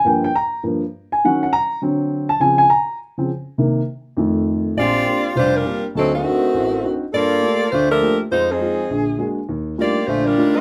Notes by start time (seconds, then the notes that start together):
0.05 G2 F3 A#3 G5
0.24 G5
0.36 A#5
0.63 G2 F3 A#3
1.12 G#5
1.24 D#3 F#3 C#4 F#5
1.43 F#5
1.53 A#5
1.82 D3 F#3 C4
2.29 A5
2.40 C#3 F3 C4 G#5
2.58 G#5
2.70 A#5
3.18 C#3 F3 C4
3.58 C3 D#3 A#3
4.17 F2 D#3 A3
4.77 A#1 C4 F4 G4 D5
5.05 A#3 C4 D4 G4
5.36 F1 G3 D4 F4 C5
5.55 G3 D4 F4 A#4
5.65 A#3 C4 D4 G4
5.95 D2 F#3 C4 D#4 A4
6.14 D#3 A3 C4 F#4
6.24 C4 D4 D#4 F#4
6.54 A1
6.84 C4 D4 D#4 F#4
7.13 G2 A#3 F4 A4 D5
7.42 A3 A#3 F4 G4
7.72 D2 A3 D4 F4 C5
7.90 F3 A3 D4 A#4
8.01 A3 A#3 F4 G4
8.31 F2 G#3 D#4 F4 C5
8.51 F3 C4 D#4 G#4
8.61 G#3 D#4 F4
8.91 A#1 D3
9.18 G#3 A#3 D4 F#4
9.49 D#2
9.78 G3 A3 A#3 D4 D#4 F4 G4 D5
10.07 A#1 D3 A3 D4 F4 C5
10.25 G3 D4 F4 A#4
10.37 G3 A3 D4 D#4 F4
10.56 C4 F#4 A#4 D#5